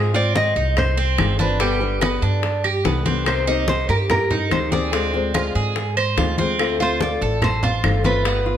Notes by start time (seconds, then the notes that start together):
Already playing: G#2 G#3 C4 F4
0.14 C4 F4 D5, high conga
0.35 G#3 C4 F4 D#5, high bongo, high conga
0.56 C2 D#4, high bongo, high conga
0.77 C5, muted steel-string acoustic guitar stroke, high bongo, high conga, low conga, claves
0.97 C4, high bongo, high conga
1.18 G1 G#3 C4 F4, high bongo, low bongo, high conga, claves
1.39 C4 D4 F4 B4, high bongo, high conga
1.60 B2 D3 G3 B3 G4, high bongo
1.81 D3 G3 B3 G4, high bongo, high conga
2.01 D3 G3 B3 G4, high bongo, high conga, claves
2.22 G2 D4, high conga
2.43 muted steel-string acoustic guitar stroke, high bongo, high conga
2.64 G4, high bongo, high conga, claves
2.84 C2 D3 G3 B3 G4, high bongo, low bongo, high conga
3.05 D3 G3 B3 C4 G4, high bongo, high conga
3.26 C3 D#3 A#3 C4 G4 C5, high bongo, high conga, claves
3.47 D#3 A#3 C4 D#4 G4, high conga
3.67 D#3 A#3 C4 G4 C5, high bongo, high conga
3.89 G2 G4 A#4, high bongo, high conga
4.10 A#4, muted steel-string acoustic guitar stroke, high bongo, high conga, low conga, claves
4.31 D#4, high bongo, high conga, low conga
4.51 D2 D#3 A#3 C4 G4 C5, high bongo, low bongo, high conga, claves
4.71 D#3 A#3 C4 G4 G#4 D5, high bongo, high conga
4.92 D3 G#3 C4 F4, high bongo, high conga
5.13 G#3 C4 F4, high bongo, high conga
5.34 D3 G#3 C4 F4, high bongo, high conga, claves
5.55 G#2 G#4, high conga
5.76 muted steel-string acoustic guitar stroke, high bongo, high conga
5.97 C5, high bongo, high conga, claves
6.17 D2 D3 G#3 C4 F4, high bongo, low bongo, high conga
6.38 G#3 C4 F4, high bongo, high conga
6.59 D3 A3 C4 F4, high bongo, high conga, claves
6.80 A3 C4 F4 C5, high conga
7.01 D3 A3 C4 F4 D5, high bongo, high conga
7.21 A1 A4, high bongo, high conga
7.42 C5, muted steel-string acoustic guitar stroke, high bongo, high conga, low conga, claves
7.63 F4, high bongo, high conga, low conga
7.83 G1 D3 A3 C4 F4, high bongo, low bongo, high conga, claves
8.04 A3 C4 F4 B4, high bongo, high conga
8.25 G3 B3 F4, high bongo, high conga
8.46 B3 F4, high bongo, high conga